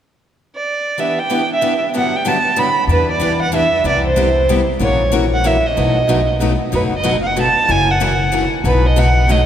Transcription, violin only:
0, 0, Header, 1, 2, 480
1, 0, Start_track
1, 0, Key_signature, 1, "minor"
1, 0, Tempo, 319489
1, 32, Time_signature, 3, 2, 24, 8
1, 14211, End_track
2, 0, Start_track
2, 0, Title_t, "Violin"
2, 0, Program_c, 0, 40
2, 832, Note_on_c, 0, 74, 77
2, 1502, Note_on_c, 0, 76, 68
2, 1525, Note_off_c, 0, 74, 0
2, 1788, Note_on_c, 0, 79, 71
2, 1811, Note_off_c, 0, 76, 0
2, 2254, Note_off_c, 0, 79, 0
2, 2293, Note_on_c, 0, 76, 83
2, 2715, Note_off_c, 0, 76, 0
2, 2965, Note_on_c, 0, 78, 74
2, 3248, Note_on_c, 0, 79, 74
2, 3271, Note_off_c, 0, 78, 0
2, 3420, Note_on_c, 0, 81, 81
2, 3442, Note_off_c, 0, 79, 0
2, 3889, Note_on_c, 0, 83, 83
2, 3911, Note_off_c, 0, 81, 0
2, 4263, Note_off_c, 0, 83, 0
2, 4394, Note_on_c, 0, 71, 80
2, 4643, Note_off_c, 0, 71, 0
2, 4673, Note_on_c, 0, 74, 74
2, 5102, Note_off_c, 0, 74, 0
2, 5136, Note_on_c, 0, 78, 86
2, 5302, Note_off_c, 0, 78, 0
2, 5345, Note_on_c, 0, 76, 85
2, 5772, Note_off_c, 0, 76, 0
2, 5821, Note_on_c, 0, 74, 78
2, 6075, Note_off_c, 0, 74, 0
2, 6109, Note_on_c, 0, 72, 75
2, 6992, Note_off_c, 0, 72, 0
2, 7254, Note_on_c, 0, 73, 74
2, 7686, Note_off_c, 0, 73, 0
2, 8021, Note_on_c, 0, 78, 79
2, 8207, Note_on_c, 0, 76, 79
2, 8230, Note_off_c, 0, 78, 0
2, 8503, Note_on_c, 0, 75, 75
2, 8526, Note_off_c, 0, 76, 0
2, 9449, Note_off_c, 0, 75, 0
2, 10143, Note_on_c, 0, 71, 74
2, 10265, Note_off_c, 0, 71, 0
2, 10441, Note_on_c, 0, 75, 83
2, 10799, Note_off_c, 0, 75, 0
2, 10854, Note_on_c, 0, 77, 57
2, 10914, Note_on_c, 0, 78, 77
2, 10936, Note_off_c, 0, 77, 0
2, 11084, Note_off_c, 0, 78, 0
2, 11130, Note_on_c, 0, 81, 94
2, 11582, Note_on_c, 0, 80, 93
2, 11605, Note_off_c, 0, 81, 0
2, 11883, Note_on_c, 0, 78, 80
2, 11906, Note_off_c, 0, 80, 0
2, 12823, Note_off_c, 0, 78, 0
2, 13027, Note_on_c, 0, 71, 78
2, 13309, Note_on_c, 0, 75, 76
2, 13332, Note_off_c, 0, 71, 0
2, 13498, Note_on_c, 0, 78, 87
2, 13521, Note_off_c, 0, 75, 0
2, 13986, Note_on_c, 0, 75, 80
2, 14008, Note_off_c, 0, 78, 0
2, 14211, Note_off_c, 0, 75, 0
2, 14211, End_track
0, 0, End_of_file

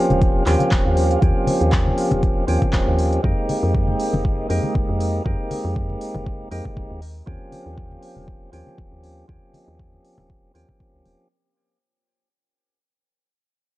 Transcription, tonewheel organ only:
0, 0, Header, 1, 2, 480
1, 0, Start_track
1, 0, Tempo, 504202
1, 1162, Time_signature, 4, 2, 24, 8
1, 13116, End_track
2, 0, Start_track
2, 0, Title_t, "Tonewheel organ"
2, 0, Program_c, 0, 16
2, 0, Note_on_c, 0, 53, 91
2, 0, Note_on_c, 0, 58, 85
2, 0, Note_on_c, 0, 60, 87
2, 0, Note_on_c, 0, 61, 89
2, 0, Note_on_c, 0, 67, 106
2, 412, Note_off_c, 0, 53, 0
2, 415, Note_off_c, 0, 58, 0
2, 417, Note_off_c, 0, 60, 0
2, 419, Note_off_c, 0, 61, 0
2, 422, Note_off_c, 0, 67, 0
2, 434, Note_on_c, 0, 53, 88
2, 438, Note_on_c, 0, 58, 86
2, 444, Note_on_c, 0, 60, 86
2, 448, Note_on_c, 0, 61, 87
2, 452, Note_on_c, 0, 67, 99
2, 1132, Note_off_c, 0, 53, 0
2, 1134, Note_off_c, 0, 58, 0
2, 1137, Note_off_c, 0, 60, 0
2, 1139, Note_off_c, 0, 61, 0
2, 1142, Note_off_c, 0, 67, 0
2, 1153, Note_on_c, 0, 53, 90
2, 1158, Note_on_c, 0, 58, 87
2, 1163, Note_on_c, 0, 60, 83
2, 1168, Note_on_c, 0, 61, 84
2, 1173, Note_on_c, 0, 67, 102
2, 2332, Note_off_c, 0, 53, 0
2, 2334, Note_off_c, 0, 58, 0
2, 2337, Note_off_c, 0, 60, 0
2, 2339, Note_off_c, 0, 61, 0
2, 2342, Note_off_c, 0, 67, 0
2, 2354, Note_on_c, 0, 53, 91
2, 2358, Note_on_c, 0, 58, 84
2, 2363, Note_on_c, 0, 60, 83
2, 2368, Note_on_c, 0, 61, 82
2, 2372, Note_on_c, 0, 67, 102
2, 3052, Note_off_c, 0, 53, 0
2, 3054, Note_off_c, 0, 58, 0
2, 3057, Note_off_c, 0, 60, 0
2, 3059, Note_off_c, 0, 61, 0
2, 3061, Note_off_c, 0, 67, 0
2, 3075, Note_on_c, 0, 56, 93
2, 3079, Note_on_c, 0, 58, 79
2, 3084, Note_on_c, 0, 60, 82
2, 3089, Note_on_c, 0, 63, 82
2, 3094, Note_on_c, 0, 67, 100
2, 4253, Note_off_c, 0, 56, 0
2, 4255, Note_off_c, 0, 58, 0
2, 4257, Note_off_c, 0, 60, 0
2, 4260, Note_off_c, 0, 63, 0
2, 4262, Note_off_c, 0, 67, 0
2, 4273, Note_on_c, 0, 56, 91
2, 4278, Note_on_c, 0, 58, 84
2, 4283, Note_on_c, 0, 60, 82
2, 4288, Note_on_c, 0, 63, 84
2, 4293, Note_on_c, 0, 67, 96
2, 4972, Note_off_c, 0, 56, 0
2, 4975, Note_off_c, 0, 58, 0
2, 4977, Note_off_c, 0, 60, 0
2, 4979, Note_off_c, 0, 63, 0
2, 4982, Note_off_c, 0, 67, 0
2, 4994, Note_on_c, 0, 56, 90
2, 4999, Note_on_c, 0, 58, 84
2, 5003, Note_on_c, 0, 60, 86
2, 5008, Note_on_c, 0, 63, 85
2, 5013, Note_on_c, 0, 67, 101
2, 6172, Note_off_c, 0, 56, 0
2, 6175, Note_off_c, 0, 58, 0
2, 6177, Note_off_c, 0, 60, 0
2, 6179, Note_off_c, 0, 63, 0
2, 6182, Note_off_c, 0, 67, 0
2, 6198, Note_on_c, 0, 56, 90
2, 6200, Note_on_c, 0, 58, 80
2, 6203, Note_on_c, 0, 60, 81
2, 6205, Note_on_c, 0, 63, 81
2, 6207, Note_on_c, 0, 67, 99
2, 6667, Note_off_c, 0, 56, 0
2, 6668, Note_off_c, 0, 58, 0
2, 6670, Note_off_c, 0, 60, 0
2, 6671, Note_off_c, 0, 63, 0
2, 6672, Note_off_c, 0, 67, 0
2, 6913, Note_on_c, 0, 53, 91
2, 6918, Note_on_c, 0, 58, 81
2, 6923, Note_on_c, 0, 60, 82
2, 6927, Note_on_c, 0, 61, 86
2, 6932, Note_on_c, 0, 67, 97
2, 8092, Note_off_c, 0, 53, 0
2, 8094, Note_off_c, 0, 58, 0
2, 8097, Note_off_c, 0, 60, 0
2, 8099, Note_off_c, 0, 61, 0
2, 8101, Note_off_c, 0, 67, 0
2, 8113, Note_on_c, 0, 53, 88
2, 8118, Note_on_c, 0, 58, 80
2, 8122, Note_on_c, 0, 60, 82
2, 8127, Note_on_c, 0, 61, 79
2, 8132, Note_on_c, 0, 67, 100
2, 8812, Note_off_c, 0, 53, 0
2, 8814, Note_off_c, 0, 58, 0
2, 8817, Note_off_c, 0, 60, 0
2, 8819, Note_off_c, 0, 61, 0
2, 8822, Note_off_c, 0, 67, 0
2, 8833, Note_on_c, 0, 53, 92
2, 8838, Note_on_c, 0, 58, 80
2, 8843, Note_on_c, 0, 60, 81
2, 8848, Note_on_c, 0, 61, 78
2, 8852, Note_on_c, 0, 67, 96
2, 10012, Note_off_c, 0, 53, 0
2, 10014, Note_off_c, 0, 58, 0
2, 10017, Note_off_c, 0, 60, 0
2, 10019, Note_off_c, 0, 61, 0
2, 10021, Note_off_c, 0, 67, 0
2, 10034, Note_on_c, 0, 53, 85
2, 10039, Note_on_c, 0, 58, 80
2, 10043, Note_on_c, 0, 60, 77
2, 10049, Note_on_c, 0, 61, 78
2, 10054, Note_on_c, 0, 67, 96
2, 10732, Note_off_c, 0, 53, 0
2, 10735, Note_off_c, 0, 58, 0
2, 10737, Note_off_c, 0, 60, 0
2, 10740, Note_off_c, 0, 61, 0
2, 10742, Note_off_c, 0, 67, 0
2, 13116, End_track
0, 0, End_of_file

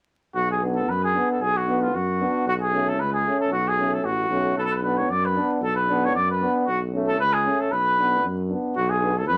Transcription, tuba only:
0, 0, Header, 1, 2, 480
1, 0, Start_track
1, 0, Tempo, 524934
1, 331, Time_signature, 2, 2, 24, 8
1, 8572, End_track
2, 0, Start_track
2, 0, Title_t, "Tuba"
2, 0, Program_c, 0, 58
2, 322, Note_on_c, 0, 35, 69
2, 808, Note_on_c, 0, 42, 70
2, 821, Note_off_c, 0, 35, 0
2, 1073, Note_off_c, 0, 42, 0
2, 1285, Note_on_c, 0, 35, 71
2, 1778, Note_on_c, 0, 42, 78
2, 1792, Note_off_c, 0, 35, 0
2, 2040, Note_off_c, 0, 42, 0
2, 2252, Note_on_c, 0, 35, 82
2, 2728, Note_on_c, 0, 37, 75
2, 2742, Note_off_c, 0, 35, 0
2, 2993, Note_off_c, 0, 37, 0
2, 3196, Note_on_c, 0, 35, 73
2, 3680, Note_off_c, 0, 35, 0
2, 3685, Note_on_c, 0, 33, 69
2, 3904, Note_off_c, 0, 33, 0
2, 3921, Note_on_c, 0, 35, 73
2, 4142, Note_off_c, 0, 35, 0
2, 4175, Note_on_c, 0, 35, 69
2, 4653, Note_on_c, 0, 42, 79
2, 4666, Note_off_c, 0, 35, 0
2, 4917, Note_off_c, 0, 42, 0
2, 5132, Note_on_c, 0, 35, 70
2, 5624, Note_on_c, 0, 42, 74
2, 5638, Note_off_c, 0, 35, 0
2, 5885, Note_off_c, 0, 42, 0
2, 6099, Note_on_c, 0, 35, 69
2, 6570, Note_on_c, 0, 37, 77
2, 6584, Note_off_c, 0, 35, 0
2, 6835, Note_off_c, 0, 37, 0
2, 7053, Note_on_c, 0, 35, 64
2, 7536, Note_on_c, 0, 42, 75
2, 7550, Note_off_c, 0, 35, 0
2, 7799, Note_off_c, 0, 42, 0
2, 8021, Note_on_c, 0, 35, 84
2, 8505, Note_on_c, 0, 42, 84
2, 8519, Note_off_c, 0, 35, 0
2, 8572, Note_off_c, 0, 42, 0
2, 8572, End_track
0, 0, End_of_file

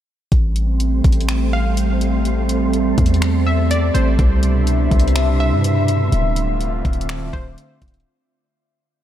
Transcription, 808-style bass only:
0, 0, Header, 1, 2, 480
1, 0, Start_track
1, 0, Key_signature, 0, "minor"
1, 0, Tempo, 483871
1, 315, Time_signature, 4, 2, 24, 8
1, 8964, End_track
2, 0, Start_track
2, 0, Title_t, "808-style bass"
2, 0, Program_c, 0, 38
2, 316, Note_on_c, 0, 33, 105
2, 1007, Note_off_c, 0, 33, 0
2, 1036, Note_on_c, 0, 33, 103
2, 2916, Note_off_c, 0, 33, 0
2, 2955, Note_on_c, 0, 40, 101
2, 3877, Note_off_c, 0, 40, 0
2, 3916, Note_on_c, 0, 33, 97
2, 4146, Note_off_c, 0, 33, 0
2, 4156, Note_on_c, 0, 36, 104
2, 4847, Note_off_c, 0, 36, 0
2, 4875, Note_on_c, 0, 36, 109
2, 5475, Note_on_c, 0, 43, 98
2, 5490, Note_off_c, 0, 36, 0
2, 6045, Note_off_c, 0, 43, 0
2, 6076, Note_on_c, 0, 26, 109
2, 6767, Note_off_c, 0, 26, 0
2, 6795, Note_on_c, 0, 26, 102
2, 7256, Note_off_c, 0, 26, 0
2, 7277, Note_on_c, 0, 26, 102
2, 7506, Note_off_c, 0, 26, 0
2, 7755, Note_on_c, 0, 26, 100
2, 7986, Note_off_c, 0, 26, 0
2, 8964, End_track
0, 0, End_of_file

